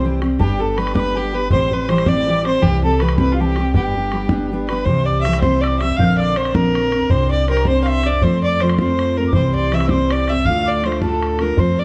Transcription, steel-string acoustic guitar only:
0.04 E3 G3 C4 G4
0.22 G3 C4 G4
0.40 G3 B3 D4 G4
0.59 B3 D4 G4
0.78 G3 B3 D4 G4
0.96 G3 B3 D4 G4
1.16 G3 B3 D4 G4
1.33 B3 D4 G4
1.51 A2 E3 G3 C4 G4
1.71 G3 C4 G4
1.88 E3 G3 C4 G4
2.06 A2 E3 G3 C4 G4
2.27 E3 G3 C4 G4
2.44 G3 C4 G4
2.61 C3 E3 G3 C4 G4
2.83 G3 C4 G4
3.01 E3 G3 C4 G4
3.18 C3 E3 G3 C4 G4
3.39 E3 G3 C4 G4
3.58 G3 C4 G4
3.75 G3 B3 D4 G4
3.95 B3 D4 G4
4.13 G3 B3 D4 G4
4.31 G3 B3 D4 G4
4.52 G3 B3 D4 G4
4.70 B3 D4 G4
4.87 C3 E3 G3 C4 G4
5.26 E3 G3 C4 G4
5.43 C3 E3 G3 C4 G4
5.81 G3 C4 G4
5.98 A#2 D3 F3 C4 D4 A#4
6.37 D3 C4 D4 A#4
6.54 A#2 D3 F3 C4 D4 A#4
6.93 D3 C4 D4 A#4
7.11 C4 D4 G4 C5
7.49 C4 D4 G4 C5
7.67 C4 D4 G4 C5
8.04 D4 G4 C5
8.22 F3 A3 C4 F4
8.61 F3 A3 C4 F4
8.80 F3 A3 C4 F4
9.18 A3 C4 F4
9.34 C3 E3 G3 C4 G4
9.72 E3 G3 C4 G4
9.91 C3 E3 G3 C4 G4
10.30 G3 C4 G4
10.48 D2 A2 D3 A3 D4 F4
10.84 D3 A3 D4 F4
11.03 D2 A2 D3 A3 D4 F4
11.40 D3 A3 D4 F4
11.58 F3 A3 C4 F4

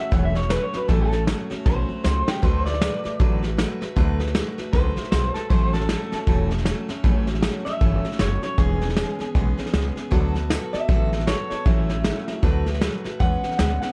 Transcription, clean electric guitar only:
0.00 E5
0.13 F#5
0.25 E5
0.37 C#5
0.49 B4
0.63 C#5
0.76 B4
0.88 A4
1.01 A4
1.66 C5
2.04 C5
2.28 G4
2.43 C5
2.66 D5
4.73 C5
5.12 C5
5.34 A4
5.50 C5
5.73 A4
7.65 E5
8.20 C#5
8.43 C#5
8.58 G#4
10.73 E5
11.27 C#5
11.50 C#5
11.66 E4
13.20 F#5
13.58 F#5
13.82 F#5

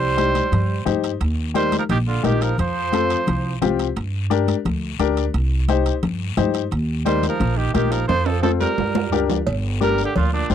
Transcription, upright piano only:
0.17 D#4 G4 C5
0.86 D#4 G4 C5
1.54 D#4 G4 A#4
2.23 D#4 G4 A#4
2.92 C4 F4 A4
3.62 C4 F4 G4
4.30 D4 G4 A#4
4.99 D4 G4 A#4
5.69 D#4 G4 C5
6.37 D#4 G4 C5
7.05 D#4 G4 A#4
7.74 D#4 G4 A#4
8.42 C4 F4 A4
9.12 D4 G4 A#4
9.81 D4 G4 A#4
10.49 D4 G4 C5

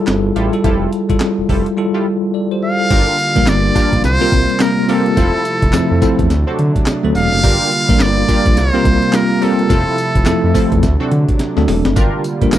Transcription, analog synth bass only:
0.08 G1
0.36 A1
0.64 F1
1.10 F1
1.38 F1
1.49 F1
2.91 G1
3.36 A#1
3.48 G1
3.93 A#1
4.04 C2
4.21 C2
4.32 C2
5.17 F1
5.63 F1
5.74 F2
5.91 F2
6.19 E2
6.31 D2
6.59 D3
7.04 D2
7.16 E1
7.33 F#1
7.44 G1
7.89 A#1
8.00 G1
8.46 A#1
8.57 C2
8.74 C2
8.85 C2
9.70 F1
10.15 F1
10.27 F2
10.44 F2
10.72 E2
10.83 D2
11.12 D3
11.57 D2
11.68 E1
11.85 F#1
11.96 G1
12.42 A#1
12.53 G1

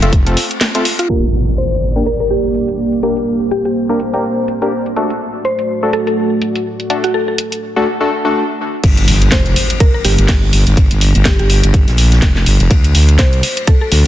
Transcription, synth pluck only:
0.99 F4
1.58 C5
2.06 A#4
2.20 A#4
2.30 G4
3.51 G4
3.65 G4
5.45 C5
5.93 A4
6.07 A4
7.04 F#4
7.14 A4
7.28 A4
9.32 C5
9.80 A#4
9.94 A#4
10.05 G4
11.26 G4
11.39 G4
13.19 C5
13.67 A4
13.81 A4

